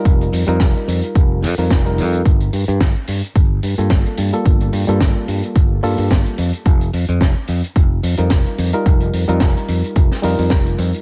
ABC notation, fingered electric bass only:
X:1
M:4/4
L:1/16
Q:"Swing 16ths" 1/4=109
K:Fmix
V:1 name="Fingered electric bass" clef=bass
F,,,2 F,, F,, F,,, z F,, z F,,,2 F,, F,, F,,,2 F,,2 | G,,,2 G,, G,, G,,, z G,, z G,,,2 G,, G,, G,,, z G,, z | G,,,2 G,, G,, G,,, z G,, z G,,,2 G,, G,, G,,, z F,, z | F,,,2 F,, F,, F,,, z F,, z F,,,2 F,, F,, F,,, z F,, z |
F,,,2 F,, F,, F,,, z F,, z F,,, z F,, F,, F,,,2 F,, z |]